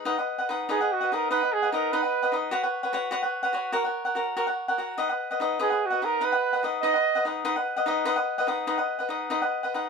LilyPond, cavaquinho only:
\new Staff \with { instrumentName = "Cavaquinho" } { \time 6/8 \key b \major \tempo 4. = 97 <dis' b' dis'' fis''>16 <b' dis'' fis''>8 <b' dis'' fis''>16 <dis' b' dis'' fis''>8 <dis' b' dis'' fis''>16 <b' dis'' fis''>8 <b' dis'' fis''>16 <dis' b' dis'' fis''>8 | <dis' b' dis'' fis''>16 <b' dis'' fis''>8 <b' dis'' fis''>16 <dis' b' dis'' fis''>8 <dis' b' dis'' fis''>16 <b' dis'' fis''>8 <b' dis'' fis''>16 <dis' b' dis'' fis''>8 | <fis' b' cis'' fis''>16 <b' cis'' fis''>8 <b' cis'' fis''>16 <fis' b' cis'' fis''>8 <fis' b' cis'' fis''>16 <b' cis'' fis''>8 <b' cis'' fis''>16 <fis' b' cis'' fis''>8 | <fis' ais' cis'' fis''>16 <ais' cis'' fis''>8 <ais' cis'' fis''>16 <fis' ais' cis'' fis''>8 <fis' ais' cis'' fis''>16 <ais' cis'' fis''>8 <ais' cis'' fis''>16 <fis' ais' cis'' fis''>8 |
<dis' b' dis'' fis''>16 <b' dis'' fis''>8 <b' dis'' fis''>16 <dis' b' dis'' fis''>8 <dis' b' dis'' fis''>16 <b' dis'' fis''>8 <b' dis'' fis''>16 <dis' b' dis'' fis''>8 | <dis' b' dis'' fis''>16 <b' dis'' fis''>8 <b' dis'' fis''>16 <dis' b' dis'' fis''>8 <dis' b' dis'' fis''>16 <b' dis'' fis''>8 <b' dis'' fis''>16 <dis' b' dis'' fis''>8 | <dis' b' dis'' fis''>16 <b' dis'' fis''>8 <b' dis'' fis''>16 <dis' b' dis'' fis''>8 <dis' b' dis'' fis''>16 <b' dis'' fis''>8 <b' dis'' fis''>16 <dis' b' dis'' fis''>8 | <dis' b' dis'' fis''>16 <b' dis'' fis''>8 <b' dis'' fis''>16 <dis' b' dis'' fis''>8 <dis' b' dis'' fis''>16 <b' dis'' fis''>8 <b' dis'' fis''>16 <dis' b' dis'' fis''>8 | }